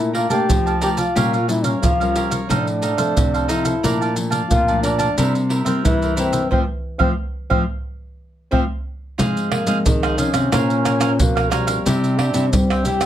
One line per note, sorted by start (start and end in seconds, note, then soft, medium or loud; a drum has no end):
0.00 0.25 A#2 medium
0.00 0.45 A#2 soft
0.00 0.26 A3 medium
0.00 0.26 D4 medium
0.00 0.13 E4 medium
0.00 muted cavaquinho stroke soft
0.00 pandeiro soft
0.00 maracas soft
0.13 0.30 F4 medium
0.13 0.30 A#4 soft
0.13 0.30 D5 soft
0.13 0.29 F5 soft
0.13 0.29 A5 soft
0.13 pandeiro medium
0.30 0.76 A3 medium
0.30 0.45 A#3 medium
0.30 0.76 D4 medium
0.30 0.76 F4 medium
0.30 0.78 G4 medium
0.30 0.64 D5 medium
0.30 0.63 F5 medium
0.30 0.63 A5 medium
0.30 pandeiro soft
0.30 maracas medium
0.48 1.12 F3 medium
0.48 1.06 F3 medium
0.48 pandeiro medium
0.48 maracas medium
0.48 surdo loud
0.66 0.81 D5 soft
0.66 0.81 F5 soft
0.66 0.81 A5 soft
0.66 pandeiro soft
0.66 maracas soft
0.81 1.03 A3 medium
0.81 1.03 D4 soft
0.81 1.03 F4 medium
0.81 0.90 G4 medium
0.81 0.97 A#4 medium
0.81 0.97 D5 medium
0.81 0.97 F5 medium
0.81 0.96 A5 medium
0.81 pandeiro medium
0.81 maracas medium
0.97 1.45 F4 medium
0.97 1.14 D5 soft
0.97 1.14 F5 soft
0.97 1.14 A5 soft
0.97 pandeiro medium
0.97 maracas medium
1.15 1.73 A#2 medium
1.15 1.79 A#2 soft
1.15 1.35 G3 medium
1.15 1.36 C#4 medium
1.15 1.36 F4 medium
1.15 1.31 G4 medium
1.15 1.31 A#4 medium
1.15 1.32 C#5 medium
1.15 1.32 F5 medium
1.15 pandeiro medium
1.15 maracas medium
1.15 surdo medium
1.33 1.47 A#4 soft
1.33 1.48 C#5 soft
1.33 1.48 F5 soft
1.33 pandeiro soft
1.33 maracas soft
1.48 1.80 G3 soft
1.48 1.80 C#4 medium
1.48 1.66 E4 medium
1.48 1.80 F4 medium
1.48 muted cavaquinho stroke soft
1.48 pandeiro medium
1.48 maracas medium
1.64 1.82 C#4 medium
1.64 1.98 A#4 soft
1.64 1.97 C#5 soft
1.64 1.97 F5 medium
1.64 pandeiro medium
1.64 maracas medium
1.82 2.46 F3 medium
1.82 2.39 F3 medium
1.82 2.29 F4 medium
1.82 pandeiro medium
1.82 maracas medium
1.82 surdo medium
2.00 2.45 G3 medium
2.00 2.45 C#4 medium
2.00 2.45 F4 medium
2.00 2.15 A#4 soft
2.00 2.15 C#5 soft
2.00 2.15 F5 soft
2.00 pandeiro soft
2.00 maracas soft
2.16 2.31 G4 soft
2.16 2.31 A#4 soft
2.16 2.31 C#5 soft
2.16 2.29 F5 soft
2.16 pandeiro medium
2.16 maracas medium
2.31 2.48 A#4 soft
2.31 2.48 C#5 medium
2.31 2.47 F5 medium
2.31 pandeiro medium
2.31 maracas medium
2.49 2.92 A2 medium
2.49 3.13 A2 soft
2.49 2.81 F3 soft
2.49 2.81 C4 medium
2.49 3.50 D4 medium
2.49 2.65 D#4 medium
2.49 2.65 A4 medium
2.49 2.65 C5 medium
2.49 2.65 F5 medium
2.49 pandeiro medium
2.49 maracas medium
2.49 surdo medium
2.67 muted cavaquinho stroke soft
2.67 pandeiro soft
2.67 maracas soft
2.82 2.98 D#4 soft
2.82 2.98 A4 soft
2.82 2.97 C5 soft
2.82 2.96 F5 medium
2.82 pandeiro medium
2.82 maracas medium
2.97 3.44 F3 medium
2.97 3.13 A3 medium
2.97 3.44 C4 medium
2.97 3.32 A4 medium
2.97 3.31 C5 medium
2.97 3.31 F5 medium
2.97 pandeiro soft
2.97 maracas medium
3.17 3.80 A2 medium
3.17 3.74 C3 medium
3.17 pandeiro medium
3.17 maracas medium
3.17 surdo medium
3.34 3.48 A4 soft
3.34 3.48 C5 soft
3.34 3.48 F5 soft
3.34 pandeiro soft
3.34 maracas soft
3.48 3.71 F3 medium
3.48 3.71 C4 medium
3.48 3.65 D#4 medium
3.48 3.72 D#4 medium
3.48 4.16 E4 medium
3.48 3.64 A4 medium
3.48 3.64 C5 medium
3.48 3.63 F5 medium
3.48 pandeiro medium
3.48 maracas medium
3.64 3.82 A4 soft
3.64 3.81 C5 soft
3.64 3.81 F5 soft
3.64 pandeiro medium
3.64 maracas medium
3.83 4.47 A#2 soft
3.83 4.41 A#2 medium
3.83 4.12 F3 soft
3.83 4.12 A3 soft
3.83 4.12 D4 medium
3.83 3.99 A#4 medium
3.83 3.99 D5 medium
3.83 3.99 F5 medium
3.83 3.99 A5 medium
3.83 pandeiro medium
3.83 maracas medium
3.83 surdo medium
4.01 4.15 D5 soft
4.01 4.15 F5 soft
4.01 4.15 A5 soft
4.01 pandeiro soft
4.01 maracas soft
4.16 4.62 F3 soft
4.16 4.62 A3 medium
4.16 4.62 D4 medium
4.16 muted cavaquinho stroke soft
4.16 pandeiro medium
4.16 maracas medium
4.30 4.65 D5 medium
4.30 4.64 F5 medium
4.30 4.64 A5 medium
4.30 pandeiro medium
4.30 maracas medium
4.50 5.15 F2 medium
4.50 5.08 A#2 medium
4.50 4.81 F4 loud
4.50 pandeiro medium
4.50 maracas medium
4.50 surdo medium
4.67 5.13 F3 medium
4.67 5.13 A3 medium
4.67 5.14 D4 medium
4.67 4.82 D5 soft
4.67 4.83 F5 soft
4.67 4.83 A5 soft
4.67 pandeiro soft
4.67 maracas soft
4.83 5.46 D4 medium
4.83 4.99 A#4 soft
4.83 4.99 D5 soft
4.83 4.98 F5 soft
4.83 4.97 A5 soft
4.83 pandeiro medium
4.83 maracas medium
4.98 5.16 D5 medium
4.98 5.15 F5 medium
4.98 5.15 A5 medium
4.98 pandeiro soft
4.98 maracas medium
5.17 5.60 C3 loud
5.17 5.81 C3 medium
5.17 5.63 G3 medium
5.17 5.63 A#3 soft
5.17 5.33 E4 medium
5.17 5.63 E4 medium
5.17 5.33 A#4 medium
5.17 5.33 C5 medium
5.17 5.34 E5 medium
5.17 pandeiro medium
5.17 maracas medium
5.17 surdo medium
5.35 muted cavaquinho stroke soft
5.35 pandeiro soft
5.35 maracas soft
5.49 5.66 E4 soft
5.49 5.65 A#4 soft
5.49 5.64 C5 soft
5.49 5.63 E5 soft
5.49 pandeiro medium
5.65 6.12 G3 medium
5.65 6.12 A#3 medium
5.65 5.81 C4 medium
5.65 6.12 E4 medium
5.65 5.99 A#4 soft
5.65 5.99 C5 medium
5.65 5.98 E5 medium
5.65 pandeiro medium
5.65 maracas medium
5.85 6.48 G2 medium
5.85 6.41 E3 medium
5.85 6.16 E4 loud
5.85 pandeiro medium
5.85 maracas medium
5.85 surdo loud
6.01 6.16 A#4 soft
6.01 6.16 C5 soft
6.01 6.16 E5 soft
6.01 pandeiro soft
6.01 maracas soft
6.16 6.39 G3 medium
6.16 6.40 A#3 medium
6.16 6.48 C4 medium
6.16 6.33 E4 medium
6.16 6.40 E4 medium
6.16 6.32 A#4 medium
6.16 6.32 C5 medium
6.16 6.31 E5 medium
6.16 pandeiro medium
6.16 maracas medium
6.32 6.49 A#4 soft
6.32 6.49 C5 soft
6.32 6.49 E5 soft
6.32 pandeiro medium
6.32 maracas medium
6.51 6.62 F3 medium
6.51 6.64 F3 medium
6.51 6.62 A3 medium
6.51 6.59 C4 medium
6.51 6.62 C4 medium
6.51 6.62 C5 medium
6.51 6.62 E5 medium
6.51 6.62 F5 medium
6.51 surdo medium
6.99 7.11 F3 medium
6.99 7.13 F3 medium
6.99 7.11 A3 medium
6.99 7.08 C4 medium
6.99 7.11 C4 medium
6.99 7.11 C5 medium
6.99 7.11 E5 medium
6.99 7.11 F5 medium
6.99 surdo medium
7.50 7.63 F3 medium
7.50 7.62 F3 medium
7.50 7.62 A3 medium
7.50 7.58 C4 medium
7.50 7.62 C4 medium
7.50 7.62 C5 medium
7.50 7.62 E5 medium
7.50 7.62 F5 medium
7.50 surdo medium
8.51 8.63 F3 medium
8.51 8.64 F3 medium
8.51 8.63 A3 medium
8.51 8.60 C4 medium
8.51 8.63 C4 medium
8.51 8.62 C5 medium
8.51 8.63 E5 medium
8.51 8.63 F5 medium
8.51 surdo medium
9.18 9.82 G#2 soft
9.18 9.64 F3 soft
9.18 9.61 G#3 medium
9.18 9.64 C4 medium
9.18 9.64 D#4 medium
9.18 9.50 F4 medium
9.18 9.50 G#4 medium
9.18 9.51 C5 medium
9.18 9.51 F5 medium
9.18 pandeiro medium
9.18 maracas medium
9.18 surdo medium
9.37 pandeiro soft
9.37 maracas soft
9.50 9.87 A#3 medium
9.50 9.66 F4 soft
9.50 9.66 G#4 soft
9.50 9.66 C5 medium
9.50 9.67 F5 medium
9.50 pandeiro medium
9.50 tamborim medium
9.66 10.13 F3 medium
9.66 9.82 G#3 medium
9.66 10.13 C4 medium
9.66 10.13 D#4 medium
9.66 9.77 F4 medium
9.66 9.77 G#4 medium
9.66 9.77 C5 medium
9.66 9.78 F5 medium
9.66 pandeiro medium
9.66 maracas medium
9.85 10.28 D#3 medium
9.85 10.49 D#3 medium
9.85 10.17 G#3 medium
9.85 pandeiro medium
9.85 maracas medium
9.85 surdo medium
10.03 10.17 G#4 medium
10.03 10.17 C5 medium
10.03 10.18 F5 medium
10.03 pandeiro soft
10.03 tamborim medium
10.03 maracas soft
10.17 10.39 F3 medium
10.17 10.39 C4 medium
10.17 11.21 C#4 medium
10.17 10.39 D#4 medium
10.17 10.34 F4 soft
10.17 10.33 G#4 medium
10.17 10.33 C5 soft
10.17 10.32 F5 medium
10.17 pandeiro medium
10.17 maracas medium
10.33 10.49 C3 medium
10.33 10.51 G#4 soft
10.33 10.50 C5 soft
10.33 10.50 F5 soft
10.33 pandeiro medium
10.33 tamborim medium
10.33 maracas medium
10.52 11.19 A#2 medium
10.52 11.16 A#3 medium
10.52 10.98 C#4 soft
10.52 10.83 F4 medium
10.52 10.98 F4 medium
10.52 10.84 A#4 medium
10.52 10.98 C5 medium
10.52 10.84 C#5 medium
10.52 10.85 F5 medium
10.52 pandeiro medium
10.52 tamborim medium
10.52 maracas medium
10.52 surdo medium
10.70 pandeiro soft
10.70 maracas soft
10.84 10.99 F4 soft
10.84 10.99 A#4 soft
10.84 10.99 C#5 soft
10.84 11.00 F5 medium
10.84 pandeiro medium
10.84 tamborim medium
10.84 maracas medium
11.00 11.47 C#4 medium
11.00 11.10 F4 medium
11.00 11.47 F4 medium
11.00 11.11 A#4 medium
11.00 11.47 C5 medium
11.00 11.11 C#5 medium
11.00 11.11 F5 medium
11.00 pandeiro medium
11.00 tamborim medium
11.00 maracas medium
11.19 11.76 B2 medium
11.19 11.83 F3 medium
11.19 11.53 A#3 medium
11.19 pandeiro medium
11.19 maracas medium
11.19 surdo loud
11.35 11.50 A#4 soft
11.35 11.50 C#5 soft
11.35 11.51 F5 soft
11.35 pandeiro soft
11.35 tamborim medium
11.35 maracas soft
11.50 12.20 G3 medium
11.50 11.81 C#4 medium
11.50 11.67 F4 medium
11.50 11.81 F4 medium
11.50 11.67 A#4 medium
11.50 11.81 C5 medium
11.50 11.66 C#5 medium
11.50 11.66 F5 medium
11.50 pandeiro medium
11.50 tamborim medium
11.50 maracas medium
11.67 11.84 A#4 soft
11.67 11.84 C#5 soft
11.67 11.84 F5 soft
11.67 pandeiro medium
11.67 maracas medium
11.85 12.29 C3 medium
11.85 12.50 C3 medium
11.85 12.18 G3 medium
11.85 12.18 C4 medium
11.85 12.17 E4 medium
11.85 12.18 E4 medium
11.85 12.17 G4 medium
11.85 12.18 C5 medium
11.85 12.18 E5 medium
11.85 pandeiro medium
11.85 maracas medium
11.85 surdo medium
12.04 pandeiro soft
12.04 maracas soft
12.18 12.54 D4 medium
12.18 12.33 E4 medium
12.18 12.33 G4 medium
12.18 12.33 C5 medium
12.18 12.34 E5 medium
12.18 pandeiro medium
12.18 tamborim medium
12.34 12.49 C3 medium
12.34 12.80 G3 medium
12.34 12.80 C4 medium
12.34 12.44 E4 medium
12.34 12.81 E4 medium
12.34 12.45 G4 medium
12.34 12.45 C5 medium
12.34 12.45 E5 medium
12.34 pandeiro medium
12.34 maracas medium
12.52 13.06 G2 medium
12.52 12.96 G3 medium
12.52 12.86 C4 medium
12.52 pandeiro medium
12.52 maracas medium
12.52 surdo loud
12.70 12.85 G4 medium
12.70 12.86 C5 medium
12.70 12.86 E5 medium
12.70 pandeiro soft
12.70 tamborim medium
12.70 maracas soft
12.85 13.06 G3 soft
12.85 13.06 C4 medium
12.85 13.02 E4 soft
12.85 13.06 E4 medium
12.85 13.06 G4 loud
12.85 13.02 G4 soft
12.85 13.01 C5 medium
12.85 13.00 E5 medium
12.85 pandeiro medium
12.85 maracas medium
13.01 13.06 C3 medium
13.01 13.06 C5 soft
13.01 13.06 E5 soft
13.01 pandeiro medium
13.01 tamborim medium
13.01 maracas medium